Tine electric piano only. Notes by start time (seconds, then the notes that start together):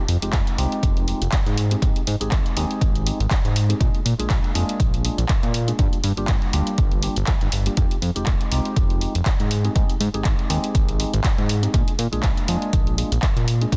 0.22 G#3 C4 D#4 F4 G4
0.58 G#3 C4 D#4 F4 G4
1.08 G#3 C4 D#4 F4 G4
1.71 G#3 C4 D#4 G4 G#4
1.82 C4 G4
2.20 G#3 C4 D#4 G4 G#4
2.56 G#3 C4 D#4 G4 G#4
3.06 G#3 C4 D#4 G4 G#4
3.69 G#3 C4 D#4 G4 G#4
3.80 G#3 A#3 D4 F4 G#4
4.19 G#3 A#3 D4 F4 G#4
4.55 G#3 A#3 D4 F4 G#4
5.04 G#3 A#3 D4 F4 G#4
5.67 G#3 A#3 D4 F4 G#4
5.78 G3 A#3 D4 F4 G4
6.17 G3 A#3 D4 F4 G4
6.53 G3 A#3 D4 F4 G4
7.03 G3 A#3 D4 F4 G4
7.66 G3 A#3 D4 F4 G4
7.77 G#3 C4 F4
8.15 G#3 C4 D#4 F4 G4
8.51 G#3 C4 D#4 F4 G4
9.01 G#3 C4 D#4 F4 G4
9.64 G#3 C4 D#4 G4 G#4
9.75 G#3 C4 D#4 G4 G#4
10.14 G#3 C4 D#4 G4 G#4
10.50 G#3 C4 D#4 G4 G#4
10.99 G#3 C4 D#4 G4 G#4
11.62 G#3 C4 D#4 G4 G#4
11.73 G#3 A#3 D4 F4 G#4
12.12 G#3 A#3 D4 F4 G#4
12.48 G#3 A#3 D4 F4 G#4
12.98 G#3 A#3 D4 F4 G#4
13.61 G#3 A#3 D4 F4 G#4
13.72 G3 A#3 D4 F4 G4